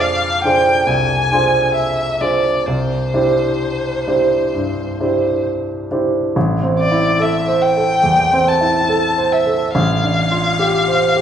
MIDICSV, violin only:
0, 0, Header, 1, 2, 480
1, 0, Start_track
1, 0, Tempo, 867052
1, 973, Tempo, 928793
1, 1442, Time_signature, 4, 2, 24, 8
1, 2413, Tempo, 904977
1, 3373, Tempo, 845070
1, 6134, End_track
2, 0, Start_track
2, 0, Title_t, "Violin"
2, 0, Program_c, 0, 40
2, 7, Note_on_c, 0, 77, 72
2, 241, Note_off_c, 0, 77, 0
2, 244, Note_on_c, 0, 79, 69
2, 482, Note_on_c, 0, 80, 67
2, 491, Note_off_c, 0, 79, 0
2, 967, Note_off_c, 0, 80, 0
2, 970, Note_on_c, 0, 76, 63
2, 1204, Note_on_c, 0, 74, 52
2, 1212, Note_off_c, 0, 76, 0
2, 1441, Note_on_c, 0, 72, 54
2, 1449, Note_off_c, 0, 74, 0
2, 2896, Note_off_c, 0, 72, 0
2, 3621, Note_on_c, 0, 74, 64
2, 3864, Note_on_c, 0, 76, 57
2, 3873, Note_off_c, 0, 74, 0
2, 4095, Note_on_c, 0, 79, 69
2, 4104, Note_off_c, 0, 76, 0
2, 4583, Note_on_c, 0, 81, 68
2, 4591, Note_off_c, 0, 79, 0
2, 5061, Note_on_c, 0, 76, 62
2, 5070, Note_off_c, 0, 81, 0
2, 5295, Note_off_c, 0, 76, 0
2, 5298, Note_on_c, 0, 77, 72
2, 6134, Note_off_c, 0, 77, 0
2, 6134, End_track
0, 0, End_of_file